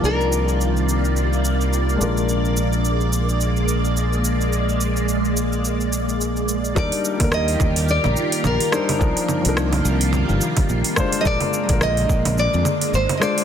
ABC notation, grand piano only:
X:1
M:4/4
L:1/16
Q:"Swing 16ths" 1/4=107
K:Bbmix
V:1 name="Grand piano"
[F,DEB]12- [F,DEB]2 [A,DFB]2- | [A,DFB]16- | [A,DFB]12- [A,DFB]2 z2 | [G,DEB]3 [G,B,EB]8- [G,B,EB]3 [G,DEc]2 |
[F,DEB]3 [F,DEB]8- [F,DEB]3 [A,DFc]2 | [A,DFB]3 [D,A,FB]8- [D,A,FB]3 [A,DFc]2 |]